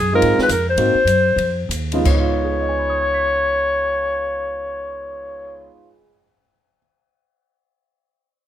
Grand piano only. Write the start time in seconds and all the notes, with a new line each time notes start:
0.13 G#3 C4 D#4 F4
0.77 A#3 C4 D#4 F#4
1.93 C#3 G#3 B3 D#4 F4
2.00 G#3
2.07 B3
2.13 D#4
2.19 F4
2.44 G#4
2.52 B4
2.60 D#5
2.69 G#5
2.79 B5
2.90 D#6
3.01 G#6
3.14 B6